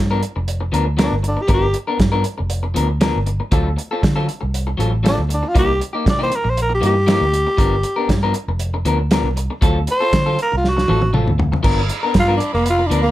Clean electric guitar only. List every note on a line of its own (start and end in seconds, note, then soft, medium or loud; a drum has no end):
0.11 0.21 F3 medium
0.11 0.21 B3 medium
0.11 0.21 D4 medium
0.11 0.22 A#4 medium
0.22 muted clean electric guitar stroke soft
0.36 muted clean electric guitar stroke soft
0.61 muted clean electric guitar stroke soft
0.72 0.86 F3 medium
0.72 0.86 B3 medium
0.72 0.85 D4 medium
0.72 0.85 A#4 medium
0.86 muted clean electric guitar stroke soft
0.97 1.14 F3 medium
0.97 1.14 B3 medium
0.97 1.14 D4 medium
0.97 1.15 A#4 medium
1.23 muted clean electric guitar stroke soft
1.37 muted clean electric guitar stroke soft
1.48 1.64 F3 medium
1.48 1.65 B3 medium
1.48 1.65 D4 medium
1.48 1.65 A#4 medium
1.74 muted clean electric guitar stroke soft
1.87 1.98 B3 soft
1.87 1.98 D4 medium
1.87 1.98 A#4 medium
1.99 muted clean electric guitar stroke soft
2.12 2.23 F3 medium
2.12 2.24 B3 medium
2.12 2.24 D4 medium
2.12 2.24 A#4 medium
2.24 muted clean electric guitar stroke soft
2.38 muted clean electric guitar stroke soft
2.63 muted clean electric guitar stroke soft
2.74 2.89 F3 medium
2.74 2.89 B3 medium
2.74 2.88 D4 medium
2.74 2.88 A#4 medium
2.89 muted clean electric guitar stroke soft
3.01 3.17 F3 medium
3.01 3.17 B3 medium
3.01 3.17 D4 medium
3.01 3.18 A#4 medium
3.26 muted clean electric guitar stroke soft
3.40 muted clean electric guitar stroke soft
3.52 3.68 F#3 medium
3.52 3.68 C4 medium
3.52 3.68 F4 medium
3.52 3.69 A4 medium
3.77 muted clean electric guitar stroke soft
3.91 4.01 C4 medium
3.91 4.02 F4 medium
3.91 4.02 A4 medium
4.02 muted clean electric guitar stroke soft
4.16 4.26 F#3 medium
4.16 4.27 C4 medium
4.16 4.27 F4 medium
4.16 4.27 A4 medium
4.27 muted clean electric guitar stroke soft
4.41 muted clean electric guitar stroke medium
4.67 muted clean electric guitar stroke soft
4.78 4.92 F#3 medium
4.78 4.92 C4 medium
4.78 4.91 F4 medium
4.78 4.91 A4 medium
4.92 muted clean electric guitar stroke soft
5.03 5.20 F#3 medium
5.03 5.20 C4 medium
5.03 5.20 F4 medium
5.03 5.20 A4 medium
5.29 muted clean electric guitar stroke soft
5.43 muted clean electric guitar stroke soft
5.55 5.71 E3 medium
5.55 5.71 A#3 medium
5.55 5.71 D#4 medium
5.55 5.72 G4 medium
5.80 muted clean electric guitar stroke soft
5.93 6.05 A#3 soft
5.93 6.05 D#4 soft
5.93 6.05 G4 medium
6.05 muted clean electric guitar stroke soft
6.19 6.30 E3 medium
6.19 6.30 A#3 medium
6.19 6.31 D#4 medium
6.19 6.31 G4 medium
6.31 muted clean electric guitar stroke soft
6.44 muted clean electric guitar stroke soft
6.70 muted clean electric guitar stroke soft
6.81 6.95 E3 medium
6.81 6.95 A#3 medium
6.81 6.94 D#4 medium
6.81 6.93 G4 medium
6.95 muted clean electric guitar stroke soft
7.07 7.23 E3 medium
7.07 7.23 A#3 medium
7.07 7.24 D#4 medium
7.07 7.24 G4 medium
7.32 muted clean electric guitar stroke soft
7.47 muted clean electric guitar stroke soft
7.57 7.74 F3 medium
7.57 7.74 B3 medium
7.57 7.75 D4 medium
7.57 7.75 A#4 medium
7.84 muted clean electric guitar stroke soft
7.96 8.09 B3 soft
7.96 8.09 D4 medium
7.96 8.09 A#4 medium
8.10 muted clean electric guitar stroke soft
8.23 8.34 F3 medium
8.23 8.34 B3 medium
8.23 8.34 D4 medium
8.23 8.35 A#4 medium
8.35 muted clean electric guitar stroke soft
8.49 muted clean electric guitar stroke soft
8.74 muted clean electric guitar stroke soft
8.85 8.99 F3 medium
8.85 8.99 B3 medium
8.85 8.99 D4 medium
8.85 8.98 A#4 medium
8.99 muted clean electric guitar stroke medium
9.11 9.27 F3 medium
9.11 9.27 B3 medium
9.11 9.27 D4 medium
9.11 9.28 A#4 medium
9.36 muted clean electric guitar stroke soft
9.50 muted clean electric guitar stroke soft
9.61 9.77 F#3 medium
9.61 9.78 C4 medium
9.61 9.78 F4 medium
9.61 9.78 A4 medium
9.88 muted clean electric guitar stroke soft
10.00 10.12 C4 soft
10.00 10.12 F4 medium
10.00 10.12 A4 medium
10.13 muted clean electric guitar stroke soft
10.26 10.36 F#3 medium
10.26 10.37 C4 medium
10.26 10.37 F4 medium
10.26 10.38 A4 medium
10.38 muted clean electric guitar stroke soft
10.52 muted clean electric guitar stroke soft
10.77 muted clean electric guitar stroke soft
10.88 11.02 F#3 medium
10.88 11.02 C4 medium
10.88 11.01 F4 medium
10.88 11.00 A4 medium
11.02 muted clean electric guitar stroke soft
11.13 11.29 F#3 medium
11.13 11.30 C4 medium
11.13 11.30 F4 medium
11.13 11.30 A4 medium
11.38 muted clean electric guitar stroke soft
11.52 muted clean electric guitar stroke soft
11.63 11.80 F3 medium
11.63 11.80 B3 medium
11.63 11.80 D4 medium
11.63 11.80 A#4 medium
11.89 muted clean electric guitar stroke soft
12.03 12.14 B3 soft
12.03 12.14 D4 soft
12.03 12.15 A#4 medium
12.15 muted clean electric guitar stroke soft
12.28 12.39 F3 medium
12.28 12.39 B3 medium
12.28 12.39 D4 medium
12.28 12.39 A#4 medium
12.40 muted clean electric guitar stroke soft
12.53 muted clean electric guitar stroke soft
12.79 muted clean electric guitar stroke soft
12.90 13.04 F3 medium
12.90 13.04 B3 medium
12.90 13.04 D4 medium
12.90 13.03 A#4 medium
13.04 muted clean electric guitar stroke soft